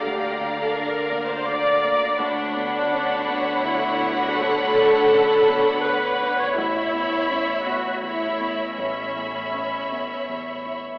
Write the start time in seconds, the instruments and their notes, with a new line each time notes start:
Already playing: double bass section D2, cello section D3, grand piano A#3, violin section D5 F5 A#5
0.06 grand piano D2, viola section G4
0.41 grand piano D3
0.62 viola section A4
0.76 grand piano D4, viola section A#4
1.12 grand piano A#3
1.32 viola section C5
1.48 grand piano D3, viola section D5
1.84 grand piano A#3
2.19 grand piano D2, double bass section D2, cello section D3, viola section D4, violin section C#5 F#5 B5
2.56 grand piano B3
2.92 grand piano C#4
3.28 grand piano B3
3.64 grand piano D3, viola section E4
4.01 grand piano B3
4.20 viola section F#4
4.37 grand piano D2, viola section A4
4.75 grand piano D3
5.11 grand piano C#4
5.48 grand piano B3
5.84 grand piano D3, viola section B4
6.22 grand piano B3
6.40 viola section C#5
6.56 double bass section A1, grand piano A1, cello section A2, viola section E4, violin section C#5 E5 B5
6.93 grand piano B3
7.30 grand piano C#4
7.66 grand piano B3, viola section F#4
8.03 grand piano E2, viola section E4, violin section C#5 E5 B5
8.40 grand piano B3
8.77 grand piano A1, viola section C#4, violin section C#5 E5 B5
9.16 grand piano E2
9.54 grand piano C#4
9.92 grand piano B3
10.29 grand piano E2
10.67 grand piano B3